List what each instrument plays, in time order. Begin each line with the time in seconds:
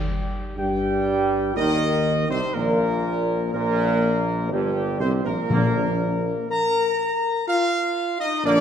Already playing: timpani D#3, french horn section G3, trumpet section G4
0.57 tuba G2, trombone section G3, french horn section G4, trumpet section G5
1.56 tuba D#2, trombone section D#3, french horn section D#4, trumpet section D#5
2.30 tuba C2, trombone section C3, french horn section C4, trumpet section C5
2.54 tuba A#1, trombone section A#2, french horn section A#3, trumpet section A#4
3.53 tuba A#1, trombone section A#2, french horn section A#3, trumpet section A#4
4.51 tuba G1, trombone section G2, french horn section G3, trumpet section G4
5.00 tuba C2, trombone section C3, french horn section C4, trumpet section C5
5.24 tuba A#1, trombone section A#2, french horn section A#3, trumpet section A#4
5.49 tuba A#1, timpani A#2, trombone section D3 A#3
6.50 french horn section A#4, trumpet section A#5
7.47 french horn section F4, trumpet section F5
8.20 french horn section D#4, trumpet section D#5
8.44 tuba A#1, trombone section D3 A#3, french horn section D4, trumpet section D5